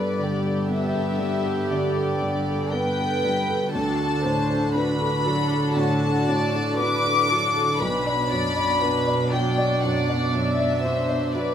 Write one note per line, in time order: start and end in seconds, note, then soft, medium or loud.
0.00 1.66 G2 soft
0.00 3.70 G2 soft
0.00 3.70 B3 soft
0.00 0.34 A4 soft
0.00 3.70 A4 soft
0.00 0.19 B4 medium
0.00 0.69 D5 medium
0.19 0.59 D3 soft
0.19 2.74 G4 medium
0.44 0.85 A4 soft
0.69 1.09 B3 soft
0.69 1.68 E5 medium
0.94 1.34 A4 soft
1.19 1.59 G3 soft
1.45 1.85 A4 soft
1.70 2.11 D3 soft
1.70 2.73 D5 medium
1.96 2.37 A4 soft
2.22 2.63 D3 soft
2.48 2.89 A4 soft
2.72 3.14 B3 soft
2.72 3.74 B4 medium
2.72 3.74 G5 medium
2.99 3.39 A4 soft
3.24 3.64 G3 soft
3.49 3.74 A4 soft
3.73 5.73 D2 medium
3.73 7.81 D3 medium
3.73 7.77 D4 soft
3.73 7.77 F#4 soft
3.73 4.23 A4 medium
3.73 4.72 A5 medium
3.99 4.40 A4 soft
4.23 4.65 A2 soft
4.23 4.74 C5 medium
4.50 4.90 A4 soft
4.74 5.16 D4 soft
4.74 5.26 B4 soft
4.74 5.74 B5 medium
5.01 5.41 A4 soft
5.26 5.66 F#3 soft
5.26 5.76 A4 medium
5.52 5.92 A4 soft
5.75 6.17 A2 soft
5.75 6.28 F#4 medium
5.75 6.79 A5 medium
6.02 6.44 A4 soft
6.28 6.69 A2 soft
6.28 6.80 D5 medium
6.54 6.95 A4 soft
6.78 7.21 D4 soft
6.78 7.29 B4 medium
6.78 7.78 D6 medium
7.05 7.46 A4 soft
7.29 7.71 F#3 soft
7.29 7.80 A4 soft
7.56 7.81 A4 soft
7.79 9.79 B1 medium
7.79 11.54 B2 medium
7.79 11.54 F#3 soft
7.79 11.54 D4 medium
7.79 8.30 B4 medium
7.79 9.31 B5 medium
8.06 8.46 D5 soft
8.30 8.72 F#2 soft
8.30 8.81 D5 medium
8.56 8.97 D5 soft
8.81 9.22 D4 soft
8.81 9.32 B4 medium
9.07 9.47 D5 soft
9.31 9.73 F#3 soft
9.31 10.83 D5 medium
9.31 9.82 G5 medium
9.58 9.98 D5 soft
9.82 10.24 F#2 soft
9.82 10.33 F#5 medium
10.09 10.49 D5 soft
10.33 10.74 F#2 soft
10.33 11.34 E5 medium
10.60 11.00 D5 soft
10.84 11.25 D4 soft
10.84 11.33 C5 medium
11.09 11.50 D5 soft
11.33 11.54 F#3 soft
11.33 11.54 B4 soft
11.33 11.54 D5 medium